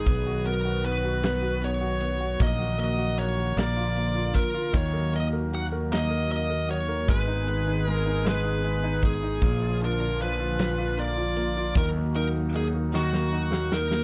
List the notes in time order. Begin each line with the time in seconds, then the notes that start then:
Already playing: B3 G#4
0.06 B1 D#3 F#3 B3 F#4, kick, ride
0.26 F#4
0.45 B3 A#4, ride
0.65 F#4
0.84 B3 B4, ride
1.04 F#4
1.23 B3, snare, ride
1.42 F#4
1.62 B3 C#5, ride
1.81 F#4
2.00 B3, ride
2.21 F#4
2.39 A#1 D#3 A#3 F#4 D#5, kick, ride
2.59 F#4
2.78 A#3 D#5, ride
2.98 F#4
3.18 A#3 C#5, ride
3.38 F#4
3.57 A#1 D3 F3 A#3 F4 D5, snare, ride
3.76 F4
3.96 A#3, ride
4.15 F4
4.34 A#3 A#4, kick, ride
4.54 F4
4.73 D#2 D#3 F#3 A#3 F#4 C#5, kick, ride
4.93 A#4
5.13 A#3 D#5, ride
5.33 A#4
5.52 F#4 F#5, ride
5.72 A#4
5.92 A#3 D#5, snare, ride
6.11 A#4
6.30 A#3 D#5, ride
6.50 A#4
6.69 F#4 C#5, ride
6.88 A#4
7.08 G#1 G#3 B3 G#4 B4, kick, ride
7.27 D#4
7.48 G#3, ride
7.67 D#4
7.87 G#3 A#4, ride
8.06 D#4
8.24 G#3 B4, snare, ride
8.45 D#4
8.64 G#3, ride
8.83 D#4
9.03 G#3 G#4, kick, ride
9.23 D#4
9.42 A#1 A#2 D3 F3 F4, kick, ride
9.62 F4
9.81 D4 A#4, ride
10.01 F4
10.20 F3 B4, ride
10.40 F4
10.59 snare, ride
10.78 F4
10.97 A#3 D5, ride
11.18 F4
11.36 A#3, ride
11.57 F4
11.75 D#2 D#3 F#3 A#3 F#4 A#4, kick, ride
11.95 A#3
12.14 D#4 A#4, ride
12.35 A#3
12.54 D#4 G#4, ride
12.73 A#3
12.94 D#3 F#4, snare
13.13 A#3, snare
13.33 D#4
13.51 A#3, snare
13.71 D#4 A#4, snare
13.91 A#3, snare